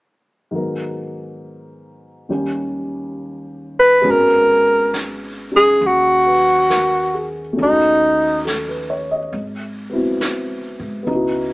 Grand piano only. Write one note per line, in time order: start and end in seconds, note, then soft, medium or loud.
0.51 2.27 G#2 soft
0.51 2.27 D#3 soft
0.51 2.28 F#3 soft
0.51 2.29 B3 soft
0.55 2.30 A#4 soft
2.29 4.05 D#2 soft
2.29 4.04 D#3 soft
2.29 4.05 G3 soft
2.29 4.03 C#4 soft
2.29 4.05 G4 soft
4.02 7.57 G#3 medium
4.02 7.58 B3 soft
4.02 5.50 C#4 soft
4.07 7.59 F#4 medium
5.52 7.56 C#4 soft
5.52 7.59 D#4 soft
5.52 7.13 G#4 soft
6.26 6.88 B4 soft
6.70 7.40 A#4 soft
7.14 7.76 G#4 soft
7.53 9.30 A3 soft
7.57 9.32 C#4 soft
7.57 9.34 D#4 soft
7.63 9.35 F#4 soft
8.45 8.86 A4 soft
8.68 9.05 B4 soft
8.90 9.17 C#5 soft
9.11 9.42 D#5 soft
9.90 11.01 B3 soft
9.90 11.08 C4 soft
9.90 11.09 E4 soft
9.95 11.10 F#4 medium
11.03 11.53 B3 soft
11.07 11.53 D#4 soft
11.07 11.53 E4 soft
11.15 11.53 F#4 medium